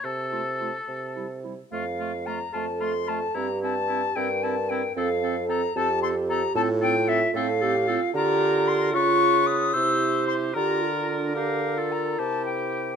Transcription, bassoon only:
\new Staff \with { instrumentName = "Bassoon" } { \clef bass \time 6/8 \key f \major \tempo 4. = 74 c4. c4. | f,4. f,4. | g,4. g,4. | f,4. f,4. |
a,4. a,4. | d4. des4. | c4. d4.~ | d4. c4. | }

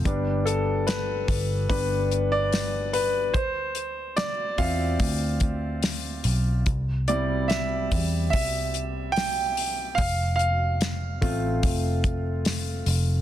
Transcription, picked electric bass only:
\new Staff \with { instrumentName = "Picked electric bass" } { \clef bass \time 4/4 \key c \major \tempo 4 = 73 g,,4. g,,8 g,,2 | d,4. e,8 d,4. b,,8 | c,4. e,8 c,2 | f,,4. a,,8 f,,4. f,,8 | }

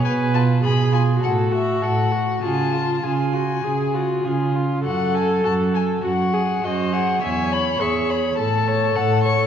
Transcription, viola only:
\new Staff \with { instrumentName = "Viola" } { \time 4/4 \key cis \phrygian \tempo 4 = 101 ces''4 aes'4 fis'2 | eis'4 eis'8 fis'8 gis'8 fis'8 eis'4 | \key cis \minor a'2 fis'8 gis'8 bis'4 | cis''4 gis'4 a'2 | }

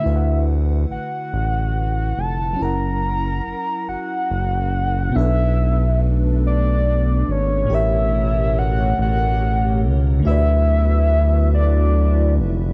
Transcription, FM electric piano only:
\new Staff \with { instrumentName = "FM electric piano" } { \time 6/8 \key b \minor \tempo 4. = 47 <d a e' b' eis'' fis''>2. | <fis cis' e' ais' fis''>2. | <b, b d' a' b'>2. | <a, a g' bes' cis''>2. |
<d a fis' b' d'' e''>2. | }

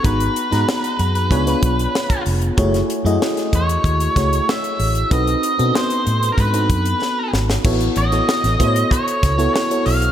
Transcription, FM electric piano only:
\new Staff \with { instrumentName = "FM electric piano" } { \time 4/4 \key a \lydian \tempo 4 = 95 <b dis' fis' gis' ais''>8. <b dis' fis' gis' ais''>4~ <b dis' fis' gis' ais''>16 <b d' eis' gis' cis''>16 <b d' eis' gis' cis''>4.~ <b d' eis' gis' cis''>16 | <a e' fis' gis' cis''>8. <a e' fis' gis' dis''>4.~ <a e' fis' gis' dis''>16 <a e' fis' gis' cis''>4. | <c' dis' fis' a' b'>8. <b c' d' dis' fis' a'>4. <c' dis' fis' a' b'>4.~ <c' dis' fis' a' b'>16 | <b e' fis' a' cis''>8. <b e' fis' a' cis''>8. <b e' fis' a' c'' cis''>4~ <b e' fis' a' c'' cis''>16 <b e' fis' a' cis''>8 <b e' fis' a' cis''>8. | }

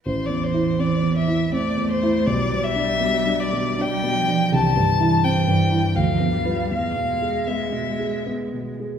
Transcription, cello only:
\new Staff \with { instrumentName = "Cello" } { \clef bass \time 3/4 \key a \minor \tempo 4 = 81 e2 a4 | g2 g8 f8 | e8 e4. f8 g8 | gis2~ gis8. r16 | }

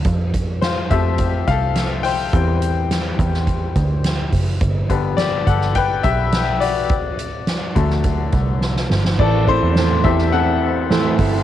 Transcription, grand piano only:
<<
  \new Staff \with { instrumentName = "Grand piano" } { \time 4/4 \key a \dorian \tempo 4 = 105 r4 <f' c''>8 <g' e''>4 <a' f''>4 <c'' g''>8~ | <c'' g''>8 r2. r8 | r4 <g' d''>8 <a' fis''>8 <b' g''>8 <g' e''>4 <fis' d''>8~ | <fis' d''>4. r2 r8 |
<a' d''>8 <e' c''>4 <g' e''>8 <a' fis''>2 | }
  \new Staff \with { instrumentName = "Grand piano" } { \clef bass \time 4/4 \key a \dorian r4. <f a c'>8 r2 | <e g c'>1 | r8 <d g b>4. r2 | r4. <d fis a>8 r2 |
r4. <e a c'>4. r4 | }
>>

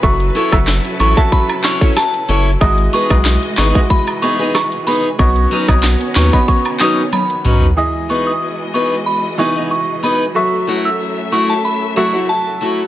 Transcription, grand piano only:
\new Staff \with { instrumentName = "Grand piano" } { \time 4/4 \key e \major \tempo 4 = 93 <fis fis' a' e''>8 r16 <fis fis' a' e''>8. r16 <fis fis' a' e''>4.~ <fis fis' a' e''>16 r8 | <gis e' fis' dis''>8 r16 <gis e' fis' dis''>8. r16 <gis e' fis' dis''>4.~ <gis e' fis' dis''>16 r8 | <b fis' cis'' dis''>8 r16 <b fis' cis'' dis''>8. r16 <b fis' cis'' dis''>4.~ <b fis' cis'' dis''>16 r8 | <e e' gis' dis''>4.~ <e e' gis' dis''>16 r8. <e e' gis' dis''>4~ <e e' gis' dis''>16 r16 |
<fis fis' a' e''>4.~ <fis fis' a' e''>16 r8. <fis fis' a' e''>4~ <fis fis' a' e''>16 r16 | }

